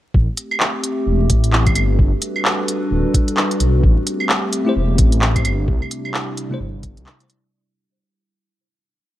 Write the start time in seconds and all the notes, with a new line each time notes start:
0.14 A1 A3 C4 G4, kick
0.37 closed hi-hat
0.51 claves
0.60 clap
0.84 closed hi-hat
1.07 E1
1.30 A1, kick, closed hi-hat
1.44 closed hi-hat
1.53 clap
1.67 kick, closed hi-hat, claves
1.75 G1, closed hi-hat, claves
1.99 G1 G3 D4 F#4 A4 B4, kick
2.22 closed hi-hat
2.36 claves
2.45 clap
2.68 closed hi-hat
2.91 D1
3.14 kick, closed hi-hat
3.28 closed hi-hat
3.37 clap
3.51 closed hi-hat
3.60 B1, closed hi-hat
3.83 A1 A3 C4 G4, kick
4.07 closed hi-hat
4.20 claves
4.29 clap
4.53 closed hi-hat
4.65 A3 E4 G4
4.69 C5
4.76 E1
4.98 A1, kick, closed hi-hat
5.12 closed hi-hat
5.22 clap
5.36 kick, closed hi-hat, claves
5.45 G1, closed hi-hat, claves
5.68 C2 C3 G3 D4 E4, kick
5.82 claves
5.91 closed hi-hat
6.05 claves
6.14 clap
6.37 closed hi-hat
6.50 C3 A3 E4
6.54 C5
6.60 G1
6.83 kick, closed hi-hat
6.97 C2, closed hi-hat
7.06 clap
7.20 closed hi-hat
7.30 closed hi-hat